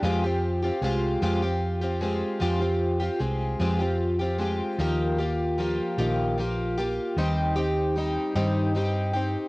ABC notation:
X:1
M:6/8
L:1/16
Q:3/8=50
K:Fdor
V:1 name="Twelve-string acoustic guitar"
[F,A,CFG] [CFG]2 [CFG] [A,CFG]2 [F,A,CFG] [CFG]2 [CFG] [A,CFG]2 | [F,A,CFG] [CFG]2 [CFG] [A,CFG]2 [F,A,CFG] [CFG]2 [CFG] [A,CFG]2 | [E,F,B,FG]2 [B,FG]2 [F,B,FG]2 [E,F,B,FG]2 [F,B,FG]2 [B,FG]2 | [E,G,CEG]2 [CEG]2 [G,CEG]2 [E,G,CEG]2 [G,CEG]2 [CEG]2 |]
V:2 name="Fingered electric bass" clef=bass
F,,4 C,,2 F,,6 | F,,4 C,,2 F,,6 | E,,6 B,,,6 | E,,6 G,,6 |]